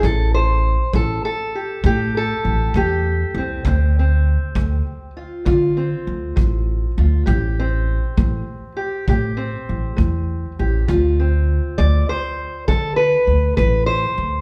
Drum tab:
BD |o--o--o--o--|o--o--o--o--|o--o--o--o--|o--o--o--o--|